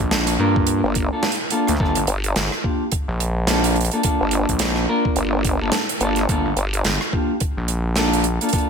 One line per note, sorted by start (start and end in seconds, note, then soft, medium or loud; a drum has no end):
0.00 0.38 A#1 loud
0.00 0.37 A#3 medium
0.00 0.37 D4 medium
0.00 0.37 F4 medium
0.00 0.37 A4 medium
0.00 kick medium
0.11 snare loud
0.27 cross-stick soft
0.27 closed hi-hat medium
0.39 0.81 G2 medium
0.39 1.08 A#3 medium
0.39 1.08 D4 medium
0.39 1.08 F4 medium
0.39 1.08 A#4 loud
0.56 kick loud
0.67 closed hi-hat medium
0.84 1.10 G1 loud
0.95 kick loud
0.95 closed hi-hat medium
1.12 1.27 A#3 medium
1.12 1.27 D4 medium
1.12 1.27 F4 medium
1.12 1.27 A4 medium
1.23 snare loud
1.32 closed hi-hat medium
1.50 1.71 A#3 medium
1.50 1.71 D4 medium
1.50 1.71 F4 medium
1.50 1.71 A4 medium
1.50 closed hi-hat medium
1.67 1.78 D2 medium
1.67 cross-stick soft
1.67 closed hi-hat medium
1.76 1.99 A#3 loud
1.76 cross-stick soft
1.80 1.94 G1 loud
1.80 1.99 D4 medium
1.80 1.99 F4 medium
1.80 1.99 A4 loud
1.80 kick loud
1.85 cross-stick soft
1.95 2.06 G1 loud
1.95 closed hi-hat medium
2.07 2.34 G1 medium
2.07 closed hi-hat medium
2.24 closed hi-hat medium
2.36 2.50 G1 loud
2.36 snare loud
2.36 closed hi-hat medium
2.52 cross-stick medium
2.64 2.83 A#3 medium
2.64 2.83 D4 medium
2.64 2.83 F4 medium
2.64 2.83 G4 medium
2.64 kick loud
2.92 kick loud
2.92 closed hi-hat medium
3.08 3.90 A#1 loud
3.20 closed hi-hat medium
3.47 3.75 A#3 medium
3.47 3.75 D4 medium
3.47 3.75 F4 medium
3.47 3.75 A4 medium
3.47 snare loud
3.47 closed hi-hat medium
3.64 closed hi-hat medium
3.76 closed hi-hat soft
3.81 closed hi-hat soft
3.85 closed hi-hat medium
3.91 4.03 A#3 medium
3.91 4.03 D4 medium
3.91 4.03 F4 medium
3.91 4.03 A4 medium
3.91 closed hi-hat soft
4.03 4.86 A#3 medium
4.03 4.86 D4 medium
4.03 4.86 F4 medium
4.03 4.86 A4 loud
4.03 kick loud
4.03 closed hi-hat medium
4.21 4.46 G1 medium
4.31 closed hi-hat medium
4.49 4.87 A#1 loud
4.49 kick medium
4.49 closed hi-hat medium
4.59 snare loud
4.59 closed hi-hat medium
4.76 cross-stick soft
4.89 5.57 A#3 medium
4.89 5.57 D4 medium
4.89 5.57 F4 medium
4.89 5.57 A#4 loud
5.05 kick loud
5.16 5.71 G1 loud
5.16 closed hi-hat medium
5.45 kick loud
5.45 closed hi-hat medium
5.61 5.76 A#3 medium
5.61 5.76 D4 medium
5.61 5.76 F4 medium
5.61 5.76 A4 medium
5.72 snare loud
5.72 closed hi-hat medium
5.89 closed hi-hat medium
6.01 6.27 G1 loud
6.01 6.20 A#3 medium
6.01 6.20 D4 medium
6.01 6.20 F4 medium
6.01 6.19 A4 loud
6.01 closed hi-hat medium
6.16 cross-stick soft
6.16 closed hi-hat soft
6.29 6.43 G1 loud
6.29 6.48 A#3 loud
6.29 6.48 D4 medium
6.29 6.48 F4 medium
6.29 6.48 A4 loud
6.29 kick loud
6.29 closed hi-hat medium
6.45 6.55 G1 loud
6.57 6.83 G1 loud
6.57 closed hi-hat medium
6.73 closed hi-hat medium
6.85 6.99 G1 loud
6.85 snare loud
6.85 closed hi-hat medium
7.01 cross-stick medium
7.13 7.32 A#3 medium
7.13 7.32 D4 medium
7.13 7.32 F4 medium
7.13 7.32 G4 loud
7.13 kick loud
7.40 kick loud
7.40 closed hi-hat medium
7.57 8.39 A#1 loud
7.68 closed hi-hat medium
7.96 8.24 A#3 medium
7.96 8.24 D4 medium
7.96 8.24 F4 medium
7.96 8.24 A4 medium
7.96 snare loud
7.96 closed hi-hat medium
8.13 closed hi-hat medium
8.24 closed hi-hat medium
8.41 8.51 A#3 medium
8.41 8.51 D4 medium
8.41 8.51 F4 medium
8.41 8.51 A4 medium
8.41 closed hi-hat medium
8.49 closed hi-hat soft
8.53 8.70 A#3 medium
8.53 8.70 D4 medium
8.53 8.70 F4 medium
8.53 8.70 A4 medium
8.53 kick loud
8.53 closed hi-hat medium
8.58 closed hi-hat soft